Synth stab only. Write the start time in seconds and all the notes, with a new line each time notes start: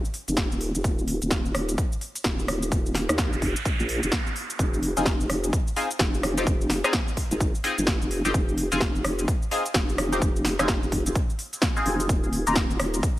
4.97 C4 D#4 F4 G#4
5.76 C4 D#4 F4 G#4
6.38 C4 D#4 F4 G4
6.84 C4 D#4 F4 G#4
7.64 C4 D#4 F4 G#4
8.25 C4 D#4 F4 G4
8.72 C4 D#4 F4 G#4
9.51 C4 D#4 F4 G#4
10.12 C4 D#4 F4 G4
10.59 C4 D#4 F4 G#4
11.77 C4 D#4 F4 G#4
12.47 A#3 D#4 F4 A#4